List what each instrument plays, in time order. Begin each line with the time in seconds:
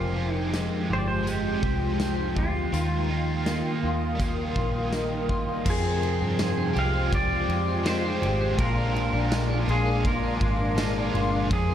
Already playing: fingered electric bass F1, overdriven electric guitar F2 C3 F3 G#3 C4 G4, clean electric guitar F2 G#3 G4, ambient pad G#3 F4 G5 C6, pedal steel guitar F4
0.15 overdriven electric guitar G#3 C4 G4, clean electric guitar C4
0.20 overdriven electric guitar F3
0.33 pedal steel guitar D#4
0.53 clean electric guitar G#3, snare, closed hi-hat
0.90 fingered electric bass G1, clean electric guitar G4, pedal steel guitar C5
0.98 pedal steel guitar D5
1.08 pedal steel guitar C5
1.23 overdriven electric guitar F3, clean electric guitar G#3
1.27 overdriven electric guitar G#3 C4, pedal steel guitar G4, closed hi-hat
1.33 overdriven electric guitar G4
1.63 fingered electric bass C2, clean electric guitar G4, kick
2.00 clean electric guitar C4, snare, closed hi-hat
2.36 fingered electric bass D2, pedal steel guitar F4, clean electric guitar G4, kick
2.72 fingered electric bass D#2, overdriven electric guitar D#3 G3 A#3 D#4 F4, clean electric guitar D#3 F4, ambient pad A#4 D#6, closed hi-hat
3.08 clean electric guitar D#4, overdriven electric guitar D#4 F4
3.13 overdriven electric guitar A#3
3.46 clean electric guitar A#3, snare, closed hi-hat
3.83 fingered electric bass D#2, clean electric guitar F4
4.15 overdriven electric guitar G3 A#3, clean electric guitar A#3
4.20 overdriven electric guitar D#4, kick, closed hi-hat
4.25 overdriven electric guitar F4
4.56 fingered electric bass A#1, clean electric guitar F4, kick
4.93 clean electric guitar D#4, snare, closed hi-hat
5.29 clean electric guitar F4, kick
5.65 overdriven electric guitar F2 C3 F3 C4, clean electric guitar F2, fingered electric bass F2, ambient pad F4 F5 G5 C6, kick, crash
5.70 pedal steel guitar G#4
5.84 clean electric guitar C4
6.03 ride
6.21 fingered electric bass G2, clean electric guitar C4
6.39 snare, ride, tambourine
6.58 clean electric guitar C4
6.73 fingered electric bass C2, overdriven electric guitar G#3 C4 G4, clean electric guitar G4, ride
6.78 overdriven electric guitar F3, pedal steel guitar F5
6.94 clean electric guitar C4
7.12 clean electric guitar F2 G4, pedal steel guitar D5, kick, ride
7.31 clean electric guitar C4
7.49 fingered electric bass F2, clean electric guitar G4, ride
7.68 clean electric guitar C4
7.83 overdriven electric guitar F3 G#3 C4, clean electric guitar G#3, pedal steel guitar C5, snare, ride, tambourine
7.88 overdriven electric guitar G4
8.05 clean electric guitar C4
8.22 fingered electric bass G#1, clean electric guitar G4, ride
8.40 clean electric guitar C4
8.57 fingered electric bass A#1, overdriven electric guitar A#2 F3 G#3 D4 F4, clean electric guitar A#2 F4, ambient pad A#4 G#5 D6, pedal steel guitar A#4, kick, ride
8.77 clean electric guitar D4
8.95 clean electric guitar F4, ride
9.13 fingered electric bass A#1, clean electric guitar D4
9.32 clean electric guitar G#3, snare, ride, tambourine
9.49 clean electric guitar D4
9.65 fingered electric bass A#1, overdriven electric guitar D4 F4, clean electric guitar F4, ride
9.70 overdriven electric guitar G#3, pedal steel guitar G#4
9.86 clean electric guitar D4
10.04 clean electric guitar A#2 F4, pedal steel guitar A#4, kick, ride
10.23 clean electric guitar D4
10.41 fingered electric bass G#1, clean electric guitar F4, kick, ride
10.59 clean electric guitar D4
10.76 overdriven electric guitar F3 G#3 D4, clean electric guitar G#3, snare, ride, tambourine
10.80 overdriven electric guitar F4
10.96 clean electric guitar D4
11.13 fingered electric bass G1, clean electric guitar F4, ride
11.32 clean electric guitar D4
11.49 overdriven electric guitar F2 C3 F3 C4, fingered electric bass F2, clean electric guitar F2, pedal steel guitar G#4, kick, ride
11.70 clean electric guitar C4